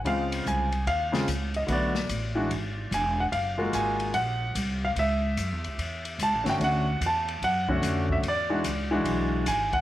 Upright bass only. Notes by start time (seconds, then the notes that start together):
0.04 C#2
0.46 C2
0.87 D#2
1.27 C#2
1.68 B1
2.09 A1
2.51 G#1
2.91 E1
3.32 F#1
3.73 G#1
4.14 A#1
4.55 C2
4.96 C#2
5.37 F#2
5.52 E2
5.66 C#2
5.78 E2
6.19 C#2
6.33 A1
6.46 G1
6.60 D2
7.01 E2
7.42 F#2
7.82 F2
8.23 E2
8.64 C#2
9.05 B1
9.46 G#1